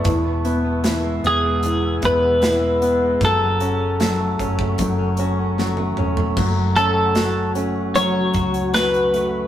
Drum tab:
CC |----------------|----------------|x---------------|
HH |x-x-x-x-x-x-x-x-|x-x-x-x-x-x-----|--x-x-x-x-xxxxx-|
SD |----o-------o---|----o-------o---|----o-------o---|
T1 |----------------|-------------o--|----------------|
T2 |----------------|--------------o-|----------------|
FT |----------------|---------------o|----------------|
BD |o---------o-----|o-----ooo-------|o---------o-----|